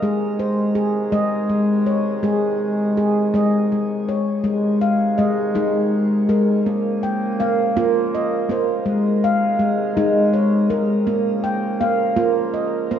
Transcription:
0.00 4.27 C3 medium
0.00 4.27 D#3 medium
0.00 4.27 G#3 medium
0.00 0.32 G#3 medium
0.00 0.74 G#4 medium
0.00 0.40 D#5 medium
0.39 1.50 C5 medium
0.75 1.49 G#4 medium
1.12 1.48 G#3 medium
1.12 2.23 D#5 medium
1.50 2.22 G#3 medium
1.86 2.97 C#5 medium
2.23 2.53 G#3 medium
2.23 2.96 G#4 medium
2.97 3.71 G#4 medium
3.34 3.71 G#3 medium
3.34 4.45 D#5 medium
3.72 4.43 G#3 medium
4.09 4.82 C#5 medium
4.44 6.64 C3 medium
4.44 6.63 D#3 medium
4.44 5.03 G#3 medium
4.44 6.63 G#3 medium
4.81 5.92 F5 medium
5.18 5.48 G#3 medium
5.18 6.28 D#5 medium
5.55 6.14 G#3 medium
5.55 6.28 D#4 medium
6.29 6.58 G#3 medium
6.29 7.02 A#4 medium
6.65 8.83 C#3 medium
6.65 8.84 F3 medium
6.65 8.83 A#3 medium
6.65 7.39 A#3 medium
7.03 8.13 G5 medium
7.40 7.69 A#3 medium
7.40 8.49 F5 medium
7.77 8.35 A#3 loud
7.77 8.49 F4 medium
8.15 9.23 D#5 medium
8.49 8.79 A#3 medium
8.49 9.23 C5 medium
8.86 11.04 C3 medium
8.86 11.04 D#3 medium
8.86 9.45 G#3 medium
8.86 11.04 G#3 medium
9.24 10.33 F5 medium
9.59 9.89 G#3 medium
9.97 10.56 G#3 loud
9.97 10.70 D#4 medium
10.34 11.43 C#5 medium
10.70 10.99 G#3 medium
10.70 11.43 A#4 medium
11.07 12.99 C#3 medium
11.07 12.99 F3 medium
11.07 11.66 A#3 medium
11.07 12.99 A#3 medium
11.44 12.53 G5 medium
11.81 12.10 A#3 medium
11.81 12.90 F5 medium
12.16 12.75 A#3 medium
12.16 12.90 F4 medium
12.54 12.99 D#5 medium
12.91 12.99 A#3 medium
12.91 12.99 C5 medium

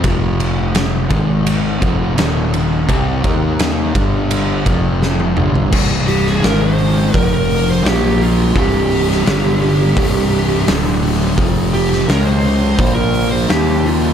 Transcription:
0.03 1.07 F1 medium
0.03 1.09 F2 medium
0.03 1.09 C3 loud
0.03 1.09 F3 loud
0.03 kick loud
0.03 ride medium
0.40 ride medium
0.75 snare loud
0.75 ride medium
1.09 1.78 G#1 medium
1.09 1.80 G#2 medium
1.09 1.80 D#3 medium
1.09 1.81 G#3 medium
1.09 kick loud
1.09 ride medium
1.47 ride medium
1.81 2.15 F1 medium
1.81 2.16 F2 medium
1.81 2.17 C3 medium
1.81 2.17 F3 loud
1.81 kick loud
1.81 ride medium
2.16 2.84 D#1 loud
2.16 2.87 D#2 loud
2.16 2.87 A#2 medium
2.16 2.87 D#3 loud
2.16 snare loud
2.16 ride medium
2.54 ride medium
2.87 3.22 C2 loud
2.87 3.22 C3 loud
2.87 3.23 G3 medium
2.87 3.23 C4 loud
2.87 kick loud
2.87 ride medium
3.24 3.91 D#2 medium
3.24 3.93 D#3 medium
3.24 3.94 A#3 medium
3.24 3.94 D#4 medium
3.24 kick loud
3.24 ride medium
3.59 snare loud
3.59 ride medium
3.93 4.62 G1 loud
3.93 4.64 G2 medium
3.93 4.64 D3 medium
3.93 4.64 G3 medium
3.93 kick loud
3.93 ride medium
4.31 ride loud
4.66 5.33 F1 loud
4.66 5.35 F2 loud
4.66 5.35 C3 medium
4.66 5.36 F3 medium
4.66 kick loud
4.66 ride medium
5.02 snare medium
5.20 high tom medium
5.35 5.70 G1 medium
5.35 5.70 G2 medium
5.35 5.71 D3 medium
5.35 5.71 G3 medium
5.35 mid tom medium
5.55 floor tom medium
5.72 6.40 C1 loud
5.72 6.40 C2 loud
5.72 6.41 G2 loud
5.72 6.42 C3 loud
5.72 kick loud
5.72 crash loud
6.07 6.27 G4 medium
6.07 open hi-hat medium
6.26 6.43 G#4 medium
6.26 snare soft
6.40 7.10 G#1 loud
6.40 7.11 G#2 loud
6.40 7.12 D#3 loud
6.40 7.12 G#3 loud
6.40 6.61 A#4 medium
6.40 snare loud
6.40 open hi-hat medium
6.62 7.16 C5 medium
6.78 open hi-hat medium
7.12 7.81 F1 loud
7.12 7.82 F2 loud
7.12 7.83 C3 loud
7.12 7.82 F3 loud
7.12 kick loud
7.12 open hi-hat medium
7.16 7.30 A#4 medium
7.33 7.67 A#4 medium
7.51 open hi-hat medium
7.70 7.86 C5 medium
7.83 8.51 A#1 loud
7.83 8.53 A#2 medium
7.83 8.54 F3 loud
7.83 8.54 A#3 loud
7.83 snare loud
7.83 open hi-hat medium
7.87 8.20 G4 medium
8.21 8.56 F4 medium
8.21 open hi-hat medium
8.54 9.22 C1 loud
8.54 9.24 C2 loud
8.54 9.23 G2 loud
8.54 9.25 C3 loud
8.54 kick loud
8.54 open hi-hat medium
8.58 10.64 G4 loud
8.91 open hi-hat medium
9.11 snare soft
9.24 9.93 G1 loud
9.24 9.95 G2 medium
9.24 9.95 D3 medium
9.24 9.95 G3 loud
9.24 snare loud
9.24 open hi-hat medium
9.61 open hi-hat medium
9.96 10.63 C1 loud
9.96 10.65 C2 loud
9.96 10.65 G2 loud
9.96 10.66 C3 loud
9.96 kick loud
9.96 open hi-hat loud
10.32 open hi-hat medium
10.67 11.34 D1 loud
10.67 11.36 D2 medium
10.67 11.37 A2 loud
10.67 11.37 D3 loud
10.67 snare loud
10.67 open hi-hat loud
11.02 open hi-hat medium
11.36 12.04 F1 medium
11.36 12.06 F2 loud
11.36 12.06 C3 loud
11.36 12.07 F3 loud
11.36 kick loud
11.36 open hi-hat loud
11.73 11.88 G4 medium
11.73 open hi-hat medium
11.90 12.06 G4 loud
11.90 snare soft
12.06 12.75 C#2 loud
12.06 12.77 C#3 loud
12.06 12.77 G#3 loud
12.06 12.78 C#4 loud
12.06 12.25 A#4 medium
12.06 snare loud
12.06 open hi-hat loud
12.25 12.93 C5 loud
12.44 open hi-hat medium
12.78 13.45 A#1 loud
12.78 13.47 A#2 loud
12.78 13.48 F3 loud
12.78 13.48 A#3 loud
12.78 kick loud
12.78 open hi-hat medium
12.94 13.29 A#4 medium
13.14 open hi-hat medium
13.30 13.48 C5 medium
13.48 14.13 D#2 loud
13.48 14.13 D#3 medium
13.48 14.13 A#3 loud
13.48 14.13 D#4 loud
13.48 13.83 G4 medium
13.48 snare loud
13.48 open hi-hat loud
13.85 14.13 F4 loud
13.85 open hi-hat medium

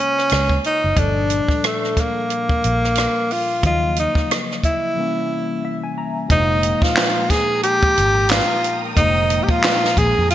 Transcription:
0.00 0.93 C#3 medium
0.00 0.93 G#3 soft
0.00 0.94 A#3 soft
0.00 0.61 C#4 medium
0.00 0.95 F4 medium
0.00 0.94 C5 medium
0.18 cross-stick soft
0.30 0.58 C#2 medium
0.30 cross-stick loud
0.30 closed hi-hat medium
0.49 kick medium
0.64 1.00 D#4 medium
0.64 closed hi-hat soft
0.84 0.95 F#1 medium
0.95 1.39 G1 medium
0.95 3.59 A#2 medium
0.95 3.59 F3 soft
0.95 3.60 G3 soft
0.95 1.68 D4 medium
0.95 3.60 A4 soft
0.95 kick loud
0.95 closed hi-hat medium
1.00 3.61 D4 medium
1.30 closed hi-hat medium
1.48 kick medium
1.48 cross-stick soft
1.64 2.02 A3 medium
1.64 cross-stick loud
1.64 closed hi-hat medium
1.84 cross-stick soft
1.97 3.34 A#3 medium
1.97 kick medium
1.97 cross-stick soft
1.97 closed hi-hat medium
2.30 closed hi-hat medium
2.49 kick medium
2.64 3.06 A#1 medium
2.64 closed hi-hat medium
2.84 cross-stick soft
2.95 cross-stick medium
2.95 closed hi-hat medium
3.31 3.65 F4 medium
3.31 open hi-hat soft
3.61 4.06 D#2 medium
3.61 4.93 C#3 medium
3.61 4.94 F3 soft
3.61 4.94 F#3 soft
3.61 4.95 A#3 soft
3.61 kick loud
3.61 closed hi-hat medium
3.66 3.96 F4 medium
3.66 4.95 D#5 medium
3.96 4.36 D#4 medium
3.96 closed hi-hat medium
4.15 kick medium
4.15 cross-stick soft
4.31 cross-stick loud
4.31 closed hi-hat medium
4.51 cross-stick soft
4.64 5.94 E4 medium
4.64 kick medium
4.64 closed hi-hat medium
4.95 6.27 C3 medium
4.95 6.27 E3 soft
4.95 6.28 G3 soft
4.95 6.28 A#3 soft
5.00 6.29 C#4 medium
5.65 5.82 E5 medium
5.83 5.96 G#5 medium
5.98 6.28 A#5 medium
6.28 6.72 F1 medium
6.28 8.92 A#2 medium
6.28 8.93 F3 medium
6.28 8.94 G#3 medium
6.28 8.93 A#3 medium
6.28 6.85 D#4 medium
6.28 10.35 A#4 medium
6.28 10.35 G5 medium
6.28 10.35 A#5 medium
6.28 10.35 D#6 medium
6.28 kick loud
6.28 closed hi-hat medium
6.33 6.39 D4 medium
6.40 8.98 D#4 medium
6.63 closed hi-hat medium
6.82 7.32 F4 medium
6.82 kick medium
6.82 snare soft
6.97 snare loud
6.97 clap loud
6.97 closed hi-hat medium
7.30 7.63 G#4 loud
7.30 kick medium
7.30 snare soft
7.30 closed hi-hat medium
7.63 8.32 G4 loud
7.63 closed hi-hat medium
7.83 kick loud
7.98 8.39 G#1 medium
7.98 closed hi-hat medium
8.29 8.83 F4 loud
8.29 snare loud
8.29 clap loud
8.29 closed hi-hat medium
8.64 closed hi-hat medium
8.95 9.39 F1 loud
8.95 10.35 A#2 medium
8.95 10.35 F3 medium
8.95 10.35 G#3 medium
8.95 10.35 A#3 medium
8.95 9.45 D#4 loud
8.95 kick loud
8.95 closed hi-hat medium
9.00 10.35 D#4 medium
9.30 closed hi-hat medium
9.43 9.52 G4 medium
9.49 10.00 F4 loud
9.49 kick medium
9.64 snare loud
9.64 clap medium
9.64 closed hi-hat medium
9.84 snare soft
9.97 10.13 A#1 medium
9.97 10.30 G#4 loud
9.97 kick medium
9.97 closed hi-hat medium
10.18 10.35 F2 loud
10.30 10.35 F4 loud
10.30 closed hi-hat medium

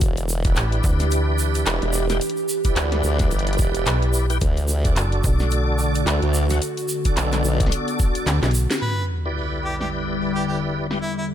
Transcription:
0.01 0.55 E1 medium
0.01 4.38 E3 medium
0.01 2.20 D4 medium
0.01 4.38 G4 medium
0.01 kick loud
0.01 closed hi-hat medium
0.01 shaker medium
0.17 closed hi-hat soft
0.17 shaker soft
0.29 shaker medium
0.44 2.06 E4 medium
0.44 2.06 G4 medium
0.44 2.06 B4 medium
0.44 2.06 D5 medium
0.44 kick loud
0.44 closed hi-hat soft
0.44 shaker soft
0.56 0.82 A1 medium
0.56 clap loud
0.56 closed hi-hat medium
0.56 shaker soft
0.72 closed hi-hat soft
0.84 1.65 D2 medium
0.84 kick loud
0.84 shaker medium
1.00 snare soft
1.00 closed hi-hat soft
1.00 shaker soft
1.11 closed hi-hat medium
1.11 shaker medium
1.38 shaker medium
1.55 closed hi-hat soft
1.55 shaker soft
1.66 1.80 E1 loud
1.66 clap loud
1.66 closed hi-hat medium
1.66 shaker soft
1.82 2.20 E1 loud
1.82 closed hi-hat soft
1.93 shaker medium
2.09 2.18 E4 medium
2.09 2.18 G4 medium
2.09 2.18 B4 medium
2.09 2.18 G5 medium
2.09 snare soft
2.09 closed hi-hat soft
2.09 shaker soft
2.21 4.40 E4 medium
2.21 closed hi-hat medium
2.21 shaker soft
2.29 closed hi-hat soft
2.37 shaker soft
2.49 shaker medium
2.64 4.26 E4 medium
2.64 4.26 G4 medium
2.64 4.26 B4 medium
2.64 4.26 D5 medium
2.64 kick medium
2.64 closed hi-hat soft
2.64 shaker soft
2.76 3.02 D2 loud
2.76 clap loud
2.76 closed hi-hat medium
2.76 shaker soft
2.92 snare soft
2.92 closed hi-hat soft
3.04 3.30 D2 loud
3.04 shaker medium
3.19 kick medium
3.19 snare soft
3.19 closed hi-hat soft
3.19 shaker soft
3.31 3.57 G1 medium
3.31 closed hi-hat soft
3.31 shaker medium
3.39 closed hi-hat soft
3.47 closed hi-hat soft
3.53 closed hi-hat soft
3.58 3.85 E1 medium
3.58 kick loud
3.58 shaker medium
3.75 closed hi-hat medium
3.75 shaker soft
3.86 4.40 B1 medium
3.86 clap loud
3.86 closed hi-hat medium
3.86 shaker soft
4.02 closed hi-hat soft
4.13 shaker medium
4.30 4.38 E4 medium
4.30 4.38 G4 medium
4.30 4.38 B4 medium
4.30 4.38 G5 medium
4.30 closed hi-hat medium
4.30 shaker soft
4.41 4.95 D2 loud
4.41 8.78 D3 medium
4.41 6.60 A3 medium
4.41 8.78 F#4 medium
4.41 kick loud
4.41 closed hi-hat medium
4.41 shaker soft
4.57 closed hi-hat soft
4.57 shaker soft
4.68 shaker medium
4.85 6.46 D4 medium
4.85 6.46 F#4 medium
4.85 6.46 A4 medium
4.85 6.46 D5 medium
4.85 kick loud
4.85 closed hi-hat soft
4.85 shaker soft
4.96 5.22 F#1 loud
4.96 clap loud
4.96 closed hi-hat medium
4.96 shaker medium
5.12 closed hi-hat soft
5.24 6.05 B1 medium
5.24 kick loud
5.24 shaker medium
5.39 snare soft
5.39 shaker soft
5.51 closed hi-hat medium
5.51 shaker soft
5.79 shaker medium
5.95 closed hi-hat medium
5.95 shaker soft
6.06 6.20 D2 loud
6.06 clap loud
6.06 closed hi-hat medium
6.06 shaker soft
6.22 6.60 D2 loud
6.22 closed hi-hat soft
6.34 shaker medium
6.49 6.58 D4 medium
6.49 6.58 F#4 medium
6.49 6.58 A4 medium
6.49 6.58 F#5 medium
6.49 snare medium
6.49 closed hi-hat medium
6.49 shaker soft
6.62 8.80 B3 medium
6.62 closed hi-hat medium
6.62 shaker medium
6.77 closed hi-hat soft
6.77 shaker soft
6.88 shaker medium
7.05 8.40 D4 medium
7.05 8.40 F#4 medium
7.05 8.40 A4 medium
7.05 8.40 D5 medium
7.05 kick medium
7.05 closed hi-hat medium
7.05 shaker soft
7.17 7.43 B1 loud
7.17 clap loud
7.17 closed hi-hat medium
7.17 shaker soft
7.32 clap soft
7.32 snare soft
7.32 closed hi-hat soft
7.32 shaker soft
7.44 7.70 B1 loud
7.44 shaker medium
7.60 kick loud
7.60 closed hi-hat medium
7.60 shaker soft
7.66 snare soft
7.72 closed hi-hat medium
7.72 shaker medium
7.88 closed hi-hat soft
7.88 shaker soft
7.99 kick loud
7.99 shaker medium
8.15 closed hi-hat medium
8.15 shaker soft
8.27 8.40 D2 loud
8.27 snare medium
8.27 clap loud
8.27 closed hi-hat medium
8.27 shaker medium
8.43 8.68 B1 loud
8.43 8.51 D4 medium
8.43 8.51 F#4 medium
8.43 8.51 A4 medium
8.43 8.51 D5 medium
8.43 snare medium
8.43 closed hi-hat soft
8.43 shaker soft
8.46 closed hi-hat soft
8.51 closed hi-hat soft
8.51 shaker medium
8.71 snare medium
8.71 closed hi-hat medium
8.71 shaker soft
8.82 11.34 E2 medium
8.82 11.34 D3 medium
8.82 11.34 G3 medium
8.82 9.05 B4 medium
8.82 sub drop medium
9.25 10.87 E4 medium
9.25 10.87 G4 medium
9.25 10.87 B4 medium
9.25 10.87 D5 medium
9.65 9.75 G4 medium
9.81 9.88 G4 medium
9.81 snare soft
10.35 10.43 G4 medium
10.48 10.58 G4 medium
10.90 10.98 E4 medium
10.90 10.99 G4 medium
10.90 10.98 B4 medium
10.90 10.98 G5 medium
10.90 snare soft
11.02 11.12 E4 medium
11.18 11.26 E4 medium

